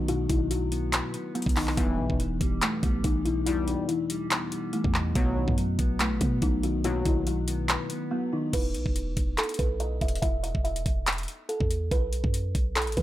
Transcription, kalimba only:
0.09 0.26 F#4 loud
0.29 0.46 E4 medium
0.51 1.31 F#4 medium
1.35 1.52 B3 medium
1.56 1.73 D#4 medium
1.77 2.58 B3 loud
2.62 2.79 A3 medium
2.83 3.00 B3 medium
3.04 3.21 D#4 medium
3.25 3.42 E4 medium
3.46 3.63 E4 loud
3.67 3.84 D#4 medium
3.88 4.69 E4 medium
4.73 5.13 A3 medium
5.15 5.96 B3 medium
6.00 6.17 A3 medium
6.21 6.38 B3 medium
6.42 6.59 D#4 loud
6.63 6.80 F#4 medium
6.85 7.02 F#4 loud
7.06 7.23 E4 medium
7.27 8.07 F#4 medium
8.11 8.28 B3 medium
8.33 8.49 D#4 medium
8.53 9.34 B4 loud
9.38 9.55 A4 medium
9.59 9.76 B4 medium
9.80 9.97 D#5 medium
10.01 10.18 E5 medium
10.22 10.39 E5 loud
10.43 10.60 D#5 medium
10.64 11.45 E5 medium
11.49 11.89 A4 medium
11.91 12.72 B4 medium
12.76 12.93 A4 medium
12.97 13.03 B4 medium

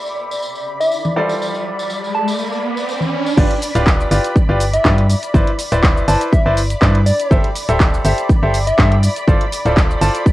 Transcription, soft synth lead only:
0.80 1.21 E5 medium
2.15 2.27 A5 medium
4.74 5.15 E5 loud
6.08 6.20 A5 medium
6.33 6.41 E5 medium
6.46 6.53 E5 medium
7.06 7.36 D5 medium
8.67 9.08 E5 medium
10.01 10.14 A5 medium

